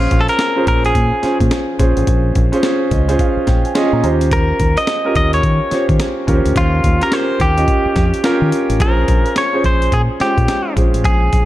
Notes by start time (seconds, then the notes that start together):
Already playing: C#4 F4 G#4 C5
0.11 A#1, kick, closed hi-hat
0.21 A4
0.28 A#4, closed hi-hat
0.39 snare, closed hi-hat
0.56 C#4 F4 G#4 C5
0.67 A#1 A#4, kick, closed hi-hat
0.85 G#4, closed hi-hat
0.95 A#2, kick, closed hi-hat
1.23 C#4 F4 G#4 C5, muted fingered electric bass stroke, snare, closed hi-hat
1.41 A#2, kick, closed hi-hat
1.51 snare, closed hi-hat
1.79 A#1 C#4 F4 G#4 C5, kick, closed hi-hat
1.97 A1, closed hi-hat
2.07 A#1, kick, closed hi-hat
2.35 A#1, kick, closed hi-hat
2.52 C#4 F4 G#4 C5, closed hi-hat
2.63 snare, closed hi-hat
2.91 C#2 D#5, kick, closed hi-hat
3.08 C#4 F4 G#4 C5, closed hi-hat
3.19 F5, kick, closed hi-hat
3.37 muted fingered electric bass stroke
3.47 A#1 G5, kick, snare, closed hi-hat
3.65 G#5, closed hi-hat
3.75 C#4 F4 G#4 D#5 C6, snare, closed hi-hat
3.93 A#2 A#5
4.03 D#2 C#4 F4 G4 C5 A#5, closed hi-hat
4.21 closed hi-hat
4.31 A#4, kick, closed hi-hat
4.60 D#2, kick, closed hi-hat
4.77 D#5, closed hi-hat
4.87 snare, closed hi-hat
5.05 C#4 F4 G4 A#4
5.15 D#2 D#5, kick, closed hi-hat
5.33 C#5, closed hi-hat
5.43 D#3, kick, closed hi-hat
5.71 C#4 F4 G4 C5, muted fingered electric bass stroke, snare, closed hi-hat
5.89 D#3, kick, closed hi-hat
6.00 snare, closed hi-hat
6.27 D#2 C#4 F4 G4 A#4, kick, closed hi-hat
6.35 C5
6.46 D2, closed hi-hat
6.56 D#2 F4, kick, closed hi-hat
6.84 D#2, kick, closed hi-hat
7.01 C#4 F4 G4 A#4, closed hi-hat
7.12 C5, snare, closed hi-hat
7.40 D#2 G4, kick, closed hi-hat
7.57 C#4 F4 G4 D#5, closed hi-hat
7.68 kick, closed hi-hat
7.86 muted fingered electric bass stroke
7.96 F2, kick, snare, closed hi-hat
8.14 closed hi-hat
8.24 C#4 F4 G4 A#4, snare, closed hi-hat
8.42 D#3
8.52 closed hi-hat
8.70 A1, closed hi-hat
8.80 A#1 C#4 F4 G#4 A#4 B4, kick, closed hi-hat
8.87 C5
9.08 A#1, kick, closed hi-hat
9.26 closed hi-hat
9.36 C#5, snare, closed hi-hat
9.53 C#4 F4 G#4 C5
9.64 A#1 C5, kick, closed hi-hat
9.82 closed hi-hat
9.92 A#2 G#4, kick, closed hi-hat
10.20 G#3 C#4 F4 G4 C5, muted fingered electric bass stroke, snare, closed hi-hat
10.38 A#2, kick, closed hi-hat
10.48 snare, closed hi-hat
10.76 A#1 C#4 F4 G#4 C5, kick, closed hi-hat
10.94 A1, closed hi-hat
11.05 A#1 G#4, kick, closed hi-hat
11.33 A#1, kick, closed hi-hat